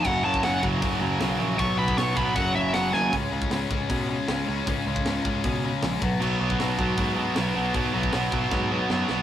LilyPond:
<<
  \new Staff \with { instrumentName = "Lead electric guitar" } { \time 4/4 \key cis \mixolydian \tempo 4 = 156 fis''8 a''8 fis''8 r2 r8 | cis'''8 b''8 cis'''8 b''8 fis''8 e''8 fis''8 gis''8 | r1 | r1 |
r1 | r1 | }
  \new Staff \with { instrumentName = "Distorted electric guitar" } { \clef bass \time 4/4 \key cis \mixolydian <fis, cis fis>8 <fis, cis fis>8 <fis, cis fis>8 <fis, cis fis>8 <fis, cis fis>8 <fis, cis fis>8 <fis, cis fis>8 <fis, cis fis>8 | <b, fis b>8 <b, fis b>8 <b, fis b>8 <b, fis b>8 <fis, cis fis>8 <fis, cis fis>8 <fis, cis fis>8 <fis, cis fis>8 | <cis gis cis'>8 <cis gis cis'>8 <cis gis cis'>8 <cis gis cis'>8 <cis gis cis'>8 <cis gis cis'>8 <cis gis cis'>8 <cis gis cis'>8 | <cis gis cis'>8 <cis gis cis'>8 <cis gis cis'>8 <cis gis cis'>8 <cis gis cis'>8 <cis gis cis'>8 <cis gis cis'>8 <b, fis b>8 |
<b, fis b>8 <b, fis b>8 <b, fis b>8 <b, fis b>8 <b, fis b>8 <b, fis b>8 <b, fis b>8 <b, fis b>8 | <b, fis b>8 <b, fis b>8 <b, fis b>8 <b, fis b>8 <b, fis b>8 <b, fis b>8 <b, fis b>8 <b, fis b>8 | }
  \new Staff \with { instrumentName = "Distorted electric guitar" } { \clef bass \time 4/4 \key cis \mixolydian <fis, cis fis>8 <fis, cis fis>8 <fis, cis fis>8 <fis, cis fis>8 <fis, cis fis>8 <fis, cis fis>8 <fis, cis fis>8 <fis, cis fis>8 | <b, fis b>8 <b, fis b>8 <b, fis b>8 <b, fis b>8 <fis, cis fis>8 <fis, cis fis>8 <fis, cis fis>8 <fis, cis fis>8 | r1 | r1 |
<b, fis b>8 <b, fis b>8 <b, fis b>8 <b, fis b>8 <b, fis b>8 <b, fis b>8 <b, fis b>8 <b, fis b>8 | <b, fis b>8 <b, fis b>8 <b, fis b>8 <b, fis b>8 <b, fis b>8 <b, fis b>8 <b, fis b>8 <b, fis b>8 | }
  \new Staff \with { instrumentName = "Distorted electric guitar" } { \clef bass \time 4/4 \key cis \mixolydian <fis, cis fis>4. <fis, cis fis>2~ <fis, cis fis>8 | <b, fis b>4. <b, fis b>8 <fis, cis fis>4. <fis, cis fis>8 | <cis gis cis'>2.~ <cis gis cis'>8 <cis gis cis'>8 | <cis gis cis'>2.~ <cis gis cis'>8 <b, fis b>8~ |
<b, fis b>2. <b, fis b>8 <b, fis b>8~ | <b, fis b>2. <b, fis b>8 r8 | }
  \new Staff \with { instrumentName = "Picked electric bass" } { \clef bass \time 4/4 \key cis \mixolydian fis,,8 fis,8 fis,,8 fis,,8 fis,,8 fis,,8 b,,8 ais,,8 | b,,8 b,,8 b,,8 b,,8 fis,,8 fis,,8 fis,,8 dis,8 | cis,8 cis,8 cis,8 cis,8 b,4 cis,8 cis,8 | cis,8 cis,8 cis,8 cis,8 b,4 ais,,8 b,,8 |
b,,8 b,,8 b,,8 b,,8 gis,4 b,,8 b,,8 | b,,8 b,,8 b,,8 b,,8 gis,4 fis,8 b,,8 | }
  \new DrumStaff \with { instrumentName = "Drums" } \drummode { \time 4/4 <cymc bd>8. bd16 <hho sn>8 bd8 <hho bd>4 <hho sn>4 | <hho bd>8. bd16 <hho sn>8 bd8 <hho bd>4 <hho sn>8 sn8 | <hho bd>8. bd16 <hho sn>8 bd8 <hho bd>4 <hho sn>4 | <hho bd>8. bd16 <hho sn>8 bd8 <hho bd>4 <hho sn>8 bd8 |
cymc8. bd16 <hho sn>8 bd8 <hho bd>4 <hho sn>4 | <hho bd>8. bd16 <hho sn>8 bd8 <bd sn>4 sn8 sn8 | }
>>